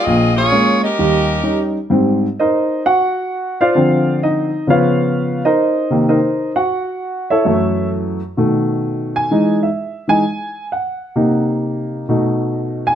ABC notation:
X:1
M:4/4
L:1/8
Q:"Swing" 1/4=130
K:Eb
V:1 name="Saxophone section"
[CFAe] [B,FA_d]2 [_DGBe]4 z | [K:Cphr] z8 | z8 | z8 |
z8 | z8 | z8 |]
V:2 name="Grand piano"
z8 | [K:Cphr] z2 [EBce]2 [_G_g]3 [Fc=df]- | [Fc=df]2 [Ee]2 [F_c_df]3 [EB=ce]- | [EBce]2 [EBce]2 [_G_g]3 [_F=Ad_f]- |
[_F=Ad_f]2 z4 z _a- | a =e2 ^g3 ^f2- | ^f z6 a |]
V:3 name="Grand piano" clef=bass
[B,,,B,,]2 [A,B,_D] z [E,,G,]2 [G,DE] z | [K:Cphr] [A,,G,C] z6 z | [=D,F,C]3 z [_D,F,_C]3 z | z [C,E,B,] z6 |
[_G,,_F,=A,]3 z [=B,,^D,A,]4 | [=E,^G,^D] z2 [E,G,D] z4 | [C,B,E]4 [=B,,=A,^D]4 |]